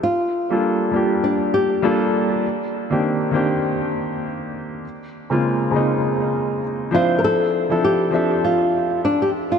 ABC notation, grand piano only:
X:1
M:4/4
L:1/16
Q:"Swing 16ths" 1/4=100
K:Dphr
V:1 name="Grand piano"
z3 [G,B,DFA] z2 [G,B,DFG]6 [G,B,DFA]4 | z3 [E,B,CDG]3 [E,B,CDG]8- [E,B,CDG]2 | z3 [_D,_A,B,CF] z2 [D,A,B,CE]6 z2 [F,C=D=Ec]2- | [F,CD=Ec]3 [F,CDEA]3 [F,CDA=e]8- [F,CDAe]2 |]